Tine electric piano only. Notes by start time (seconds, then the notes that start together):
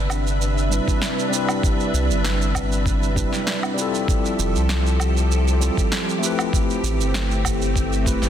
0.70 G3 C4 D4 E4 B4
1.29 G3 C4 D4
1.34 E4 B4
3.15 G3 C4 D4 E4 B4
3.74 G3 C4 E4
3.80 F4 A4
5.60 G3 C4 E4 F4 A4
6.19 A3 C4 E4
6.24 G4 B4
8.04 A3 C4 E4 G4 B4